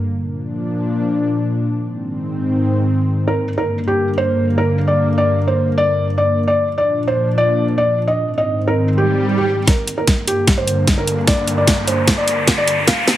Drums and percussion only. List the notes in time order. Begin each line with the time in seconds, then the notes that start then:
9.67 kick, snare, closed hi-hat
9.88 closed hi-hat
10.07 kick, snare, closed hi-hat
10.28 closed hi-hat
10.47 kick, snare, closed hi-hat
10.68 closed hi-hat
10.87 kick, snare, closed hi-hat
11.07 closed hi-hat
11.27 kick, snare, closed hi-hat
11.48 closed hi-hat
11.67 kick, snare, closed hi-hat
11.88 closed hi-hat
12.07 kick, snare, closed hi-hat
12.28 closed hi-hat
12.47 kick, snare, closed hi-hat
12.68 closed hi-hat
12.88 kick, snare, closed hi-hat
13.08 snare, closed hi-hat